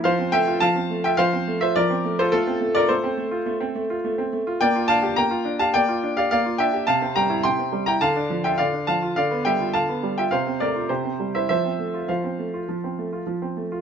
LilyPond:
\new Staff \with { instrumentName = "Grand piano" } { \time 4/4 \key f \major \tempo 4 = 105 << { <c'' f''>8 <e'' g''>8 <f'' a''>8. <e'' g''>16 <c'' f''>8. <c'' e''>16 <bes' d''>8. <a' c''>16 | <f' a'>8. <bes' d''>16 <a' c''>2~ <a' c''>8 r8 | <d'' g''>8 <f'' a''>8 <g'' bes''>8. <f'' a''>16 <d'' g''>8. <d'' f''>16 <d'' f''>8 <e'' g''>8 | <f'' a''>8 <g'' bes''>8 <g'' c'''>8. <g'' bes''>16 <f'' a''>8. <e'' g''>16 <d'' f''>8 <f'' a''>8 |
<d'' f''>8 <e'' g''>8 <f'' a''>8. <e'' g''>16 <c'' f''>8 <bes' d''>8 <g' c''>8. <c'' e''>16 | <c'' e''>4 <c'' f''>2~ <c'' f''>8 r8 | } \\ { f16 c'16 a16 f'16 f16 c'16 a16 f'16 f16 c'16 a16 f'16 f16 c'16 a16 f'16 | a16 c'16 a16 f'16 a16 c'16 a16 f'16 a16 c'16 a16 f'16 a16 c'16 a16 f'16 | bes16 f'16 d'16 g'16 bes16 f'16 d'16 g'16 bes16 f'16 d'16 g'16 bes16 f'16 d'16 g'16 | c16 c'16 g16 e'16 c16 c'16 g16 e'16 d16 d'16 f16 f'16 d16 d'16 f16 f'16 |
d16 b16 g16 f'16 d16 b16 g16 f'16 c16 c'16 a16 f'16 c16 c'16 g16 e'16 | f16 c'16 a16 f'16 f16 c'16 a16 f'16 f16 c'16 a16 f'16 f16 c'16 a16 f'16 | } >> }